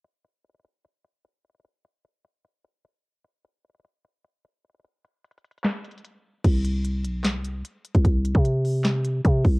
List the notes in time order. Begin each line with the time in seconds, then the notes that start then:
0.05 closed hi-hat
0.25 closed hi-hat
0.45 closed hi-hat
0.50 closed hi-hat
0.55 closed hi-hat
0.60 closed hi-hat
0.65 closed hi-hat
0.85 closed hi-hat
1.05 closed hi-hat
1.25 closed hi-hat
1.45 closed hi-hat
1.50 closed hi-hat
1.55 closed hi-hat
1.60 closed hi-hat
1.65 closed hi-hat
1.85 closed hi-hat
2.05 closed hi-hat
2.25 closed hi-hat
2.45 closed hi-hat
2.64 closed hi-hat
2.85 closed hi-hat
3.25 closed hi-hat
3.45 closed hi-hat
3.65 closed hi-hat
3.70 closed hi-hat
3.75 closed hi-hat
3.80 closed hi-hat
3.85 closed hi-hat
4.05 closed hi-hat
4.25 closed hi-hat
4.45 closed hi-hat
4.65 closed hi-hat
4.70 closed hi-hat
4.75 closed hi-hat
4.80 closed hi-hat
4.85 closed hi-hat
5.05 closed hi-hat
5.25 closed hi-hat
5.31 closed hi-hat
5.38 closed hi-hat
5.45 closed hi-hat
5.51 closed hi-hat
5.58 closed hi-hat
5.65 snare, clap, closed hi-hat
5.85 closed hi-hat
5.91 closed hi-hat
5.98 closed hi-hat
6.05 closed hi-hat
6.45 C2, kick, closed hi-hat, crash
6.65 closed hi-hat
6.85 closed hi-hat
7.05 B1, closed hi-hat
7.25 snare, clap, closed hi-hat
7.35 C2
7.45 closed hi-hat
7.65 closed hi-hat
7.85 closed hi-hat
7.95 C2, kick, closed hi-hat
8.05 C2, kick, closed hi-hat
8.25 closed hi-hat
8.35 C3, kick
8.45 closed hi-hat
8.65 open hi-hat
8.85 snare, clap, closed hi-hat
9.05 closed hi-hat
9.25 C3, kick, closed hi-hat
9.45 C2, kick, open hi-hat